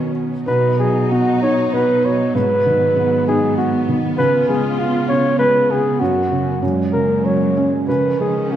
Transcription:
Already playing: felt piano B2 F#3 D#4 F#4, string section D#3 B3 C#4, flugelhorn B4
0.47 string section B2 F#3 D#4, felt piano B2, flugelhorn B4
0.79 felt piano F#3, flugelhorn G#4
1.11 felt piano B3, flugelhorn F#4
1.42 felt piano D#4, flugelhorn C#5
1.73 felt piano B3, flugelhorn B4
2.04 felt piano F#3, flugelhorn C#5
2.35 felt piano G#2, string section G#2 B3, flugelhorn B4
2.66 felt piano D#3
2.97 felt piano B3
3.27 felt piano D#4, flugelhorn G#4
3.57 felt piano B3, flugelhorn F#4
3.88 felt piano D#3
4.18 felt piano C#3, string section C#3 F4, flugelhorn B4
4.48 felt piano G#3, flugelhorn G#4
4.79 felt piano B3, flugelhorn F4
5.09 felt piano C#3, flugelhorn C#5
5.39 felt piano G#3, flugelhorn B4
5.70 felt piano B3, flugelhorn G#4
6.00 felt piano F#2, string section F#2, flugelhorn F#4
6.31 felt piano C#3
6.62 felt piano F#2, string section A#2 F#3 G#3
6.92 felt piano C#3, flugelhorn A#4
7.25 felt piano F#3, flugelhorn C#5
7.57 felt piano C#4
7.88 felt piano C#3, string section D#3 F3 C#4, flugelhorn B4
8.20 felt piano G#3, flugelhorn G#4
8.52 felt piano C#4, flugelhorn F4

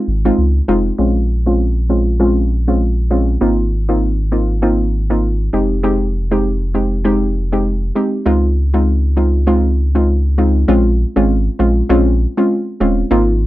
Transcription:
0.08 sub bass G#1
0.25 synth pluck G#3 C4 D#4 F4
0.38 sub bass C#2
0.68 sub bass F1, synth pluck G#3 C4 D#4 F4
0.98 sub bass A#1, synth pluck G#3 C4 C#4 F4
1.46 synth pluck G#3 C4 C#4 F4
1.89 synth pluck G#3 C4 C#4 F4
2.20 synth pluck G#3 C4 C#4 F4
2.68 synth pluck G#3 C4 C#4 F4
3.10 synth pluck G#3 C4 C#4 F4
3.41 sub bass G#1, synth pluck A#3 C4 D#4 F4
3.89 synth pluck A#3 C4 D#4 F4
4.32 synth pluck A#3 C4 D#4 F4
4.62 synth pluck A#3 C4 D#4 F4
5.10 synth pluck A#3 C4 D#4 F4
5.53 sub bass F1, synth pluck G#3 C4 D#4 G4
5.83 synth pluck G#3 C4 D#4 G4
6.31 synth pluck G#3 C4 D#4 G4
6.74 synth pluck G#3 C4 D#4 G4
7.04 synth pluck G#3 C4 D#4 G4
7.52 synth pluck G#3 C4 D#4 G4
7.95 synth pluck G#3 C4 D#4 G4
8.26 sub bass C#2, synth pluck G#3 C4 D#4 F4
8.74 synth pluck G#3 C4 D#4 F4
9.17 synth pluck G#3 C4 D#4 F4
9.47 synth pluck G#3 C4 D#4 F4
9.95 synth pluck G#3 C4 D#4 F4
10.38 synth pluck G#3 C4 D#4 F4
10.68 sub bass A#1, synth pluck G#3 C4 C#4 F4
11.16 sub bass G#1, synth pluck G#3 C4 C#4 F4
11.59 sub bass A#1, synth pluck G#3 C4 C#4 F4
11.89 sub bass A#1, synth pluck G#3 C4 C#4 F4
12.37 synth pluck G#3 C4 C#4 F4
12.80 sub bass D#1, synth pluck G#3 C4 C#4 F4
13.11 sub bass G#1, synth pluck A#3 C4 D#4 F4

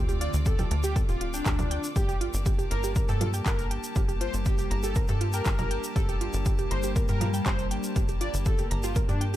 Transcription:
Already playing: analog synth bass D2, ambient pad D3 A3 C4 F4, string section F4 D5 D6
0.09 synth arpeggio sound G4, closed hi-hat, shaker
0.21 synth arpeggio sound F4, analog synth lead D5, closed hi-hat
0.34 analog synth bass D2, closed hi-hat, shaker
0.46 synth arpeggio sound G4, analog synth lead A4, kick, closed hi-hat, shaker
0.59 synth arpeggio sound G4, closed hi-hat, low conga, shaker
0.71 analog synth bass D2, synth arpeggio sound A5, closed hi-hat
0.83 synth arpeggio sound G4, analog synth lead G4, closed hi-hat, shaker
0.96 synth arpeggio sound A4, kick, closed hi-hat, shaker
1.09 analog synth bass D1, analog synth lead F4, synth arpeggio sound G4, closed hi-hat, shaker
1.21 synth arpeggio sound F4, closed hi-hat
1.34 analog synth lead D4, synth arpeggio sound G5, closed hi-hat, shaker
1.46 analog synth bass D2, synth arpeggio sound G4, kick, clap, closed hi-hat, shaker
1.59 closed hi-hat, low conga, shaker
1.71 synth arpeggio sound G5, closed hi-hat
1.84 closed hi-hat, shaker
1.96 analog synth bass G1, ambient pad G3 D4 A#4 A5, synth arpeggio sound G4, analog synth lead G4, string section G4, kick, closed hi-hat, shaker
2.09 synth arpeggio sound G4, closed hi-hat, shaker
2.21 string section A#3, synth arpeggio sound F4, closed hi-hat
2.34 analog synth bass G1, closed hi-hat, shaker
2.42 synth arpeggio sound G4, string section A5, kick, shaker
2.46 closed hi-hat
2.58 synth arpeggio sound G4, closed hi-hat, shaker
2.71 analog synth bass G1, analog synth lead A#4, synth arpeggio sound A#5, closed hi-hat
2.84 synth arpeggio sound G4, closed hi-hat, shaker
2.96 synth arpeggio sound A#4, kick, closed hi-hat, shaker
3.09 analog synth bass G2, synth arpeggio sound G4, analog synth lead A4, closed hi-hat, shaker
3.21 synth arpeggio sound F4, closed hi-hat, low conga
3.34 synth arpeggio sound G5, closed hi-hat, shaker
3.46 analog synth bass G1, synth arpeggio sound G4, analog synth lead A#4, kick, clap, closed hi-hat, shaker
3.59 closed hi-hat, shaker
3.71 synth arpeggio sound G5, closed hi-hat
3.84 closed hi-hat, shaker
3.96 analog synth bass G1, synth arpeggio sound G4, kick, closed hi-hat, shaker
4.09 synth arpeggio sound G4, closed hi-hat, shaker
4.21 synth arpeggio sound F4, analog synth lead C5, closed hi-hat
4.34 analog synth bass G1, closed hi-hat, shaker
4.45 synth arpeggio sound G4, analog synth lead G4, kick, closed hi-hat, shaker
4.58 synth arpeggio sound G4, closed hi-hat, shaker
4.71 analog synth bass G1, synth arpeggio sound A#5, closed hi-hat
4.83 synth arpeggio sound G4, analog synth lead A4, closed hi-hat, shaker
4.95 synth arpeggio sound A#4, kick, closed hi-hat, shaker
5.08 analog synth bass G2, synth arpeggio sound G4, analog synth lead A4, closed hi-hat, shaker
5.21 synth arpeggio sound F4, closed hi-hat
5.33 analog synth lead A#4, synth arpeggio sound G5, closed hi-hat, shaker
5.45 analog synth bass G1, synth arpeggio sound G4, kick, clap, closed hi-hat, shaker
5.59 closed hi-hat, low conga, shaker
5.71 synth arpeggio sound G5, closed hi-hat
5.84 closed hi-hat, shaker
5.96 analog synth bass G1, synth arpeggio sound G4, ambient pad G4, analog synth lead A4, kick, closed hi-hat, shaker
6.09 synth arpeggio sound G4, closed hi-hat, shaker
6.21 synth arpeggio sound F4, closed hi-hat
6.33 analog synth bass G1, closed hi-hat, shaker
6.46 synth arpeggio sound G4, kick, closed hi-hat, shaker
6.58 synth arpeggio sound G4, closed hi-hat, shaker
6.71 analog synth bass G1, analog synth lead C5, synth arpeggio sound A#5, closed hi-hat
6.83 synth arpeggio sound G4, closed hi-hat, shaker
6.96 synth arpeggio sound A#4, kick, closed hi-hat, shaker
7.08 analog synth bass G2, synth arpeggio sound G4, analog synth lead A#4, closed hi-hat, shaker
7.21 synth arpeggio sound F4, closed hi-hat, low conga
7.34 synth arpeggio sound G5, closed hi-hat, shaker
7.46 analog synth bass G1, synth arpeggio sound G4, analog synth lead C5, kick, clap, closed hi-hat, shaker
7.59 closed hi-hat, shaker
7.71 synth arpeggio sound G5, closed hi-hat
7.84 closed hi-hat, shaker
7.96 analog synth bass G1, synth arpeggio sound G4, kick, closed hi-hat, shaker
8.08 synth arpeggio sound G4, closed hi-hat, shaker
8.21 synth arpeggio sound F4, analog synth lead D5, closed hi-hat
8.34 analog synth bass G1, closed hi-hat, shaker
8.46 synth arpeggio sound G4, analog synth lead A4, kick, closed hi-hat, shaker
8.58 synth arpeggio sound G4, closed hi-hat, shaker
8.71 analog synth bass G1, synth arpeggio sound A#5, closed hi-hat
8.83 analog synth lead F4, synth arpeggio sound G4, closed hi-hat, shaker
8.96 synth arpeggio sound A#4, kick, closed hi-hat, shaker
9.09 analog synth bass G2, analog synth lead D4, synth arpeggio sound G4, closed hi-hat, shaker
9.21 synth arpeggio sound G5, closed hi-hat

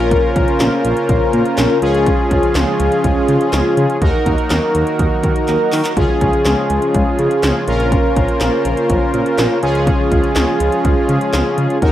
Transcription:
Already playing: analog synth bass A#1, analog synth pad C#3 A#3 F4 C5, analog polysynth C#4 F4 A#4
0.11 kick, closed hi-hat
0.36 analog synth bass A#1, kick, closed hi-hat
0.48 closed hi-hat
0.60 analog synth bass A#1, snare, clap, closed hi-hat
0.85 analog synth bass A#1, closed hi-hat
0.97 closed hi-hat
1.09 analog synth bass A#1, kick, closed hi-hat
1.33 analog synth bass A#2, closed hi-hat
1.46 closed hi-hat
1.57 analog synth bass A#1, snare, clap, closed hi-hat
1.82 analog synth bass C#2, analog synth pad F3 G#3 F4, analog polysynth C#4 F4 G#4, closed hi-hat
1.95 closed hi-hat
2.06 kick, closed hi-hat
2.31 analog synth bass C#2, kick, closed hi-hat
2.43 closed hi-hat
2.55 analog synth bass C#2, snare, clap, closed hi-hat
2.80 analog synth bass C#2, closed hi-hat
2.92 closed hi-hat
3.04 analog synth bass C#2, kick, closed hi-hat
3.28 analog synth bass C#3, closed hi-hat
3.41 closed hi-hat
3.53 analog synth bass C#2, snare, clap, closed hi-hat
3.77 analog synth bass C#3, closed hi-hat
3.90 closed hi-hat
4.02 analog synth bass D#2, analog synth pad D#3 F#3 A#3 F#4, analog polysynth D#4 F#4 A#4, kick, closed hi-hat
4.26 analog synth bass D#2, kick, closed hi-hat
4.38 closed hi-hat
4.50 analog synth bass D#2, snare, clap, closed hi-hat
4.75 analog synth bass D#2, closed hi-hat
4.87 closed hi-hat
4.99 analog synth bass D#2, kick, closed hi-hat
5.23 analog synth bass D#3, kick, closed hi-hat
5.36 closed hi-hat
5.48 analog synth bass D#2, clap, closed hi-hat
5.72 analog synth bass D#3, clap, open hi-hat
5.85 clap, closed hi-hat
5.97 analog synth bass C#2, analog synth pad C#3 F3 G#3 F4, analog polysynth C#4 F4 G#4, kick, closed hi-hat
6.21 analog synth bass C#2, kick, closed hi-hat
6.33 closed hi-hat
6.45 analog synth bass C#2, snare, clap, closed hi-hat
6.70 analog synth bass C#2, closed hi-hat
6.82 closed hi-hat
6.94 analog synth bass C#2, kick, closed hi-hat
7.19 analog synth bass C#3, closed hi-hat
7.31 closed hi-hat
7.43 analog synth bass C#2, snare, clap, closed hi-hat
7.68 analog synth bass A#1, analog synth pad C#3 A#3 C5, analog polysynth C#4 F4 A#4, closed hi-hat
7.80 closed hi-hat
7.92 kick, closed hi-hat
8.16 analog synth bass A#1, kick, closed hi-hat
8.28 closed hi-hat
8.41 analog synth bass A#1, snare, clap, closed hi-hat
8.65 analog synth bass A#1, closed hi-hat
8.77 closed hi-hat
8.90 analog synth bass A#1, kick, closed hi-hat
9.14 analog synth bass A#2, closed hi-hat
9.26 closed hi-hat
9.38 analog synth bass A#1, snare, clap, closed hi-hat
9.63 analog synth bass C#2, analog synth pad F3 G#3 F4, analog polysynth C#4 F4 G#4, closed hi-hat
9.75 closed hi-hat
9.87 kick, closed hi-hat
10.12 analog synth bass C#2, kick, closed hi-hat
10.24 closed hi-hat
10.36 analog synth bass C#2, snare, clap, closed hi-hat
10.60 analog synth bass C#2, closed hi-hat
10.72 closed hi-hat
10.85 analog synth bass C#2, kick, closed hi-hat
11.09 analog synth bass C#3, closed hi-hat
11.21 closed hi-hat
11.33 analog synth bass C#2, snare, clap, closed hi-hat
11.58 analog synth bass C#3, closed hi-hat
11.70 closed hi-hat
11.82 analog synth bass D#2, analog synth pad D#3 F#3 A#3 F#4, analog polysynth D#4 F#4 A#4, kick, closed hi-hat

